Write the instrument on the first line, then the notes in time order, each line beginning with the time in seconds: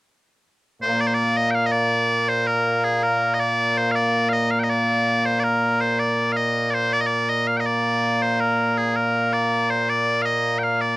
bagpipes
0.82 A#2 A#3 C5
1.00 D5
1.07 C5
1.14 D5
1.37 D#5
1.51 G5
1.55 F5
1.66 D#5
1.72 D5
2.28 C5
2.47 A#4
2.84 G#4
3.03 A#4
3.34 D#5
3.40 D5
3.77 C5
3.91 F5
3.96 D5
4.29 D#5 F5
4.51 F5
4.59 G5
4.64 D#5
4.70 D5
5.25 C5
5.40 D5
5.44 A#4
5.81 C5
5.99 D5
6.32 F5
6.37 D#5
6.71 C5 D5
6.93 D5
7.01 D#5
7.07 D5
7.29 D#5
7.47 F5
7.57 D#5 G5
7.66 D5
8.22 C5
8.40 A#4
8.77 G#4
8.96 A#4
9.33 D5
9.70 C5
9.89 D5
10.22 D#5 F5
10.59 G5
10.63 F5
10.81 D5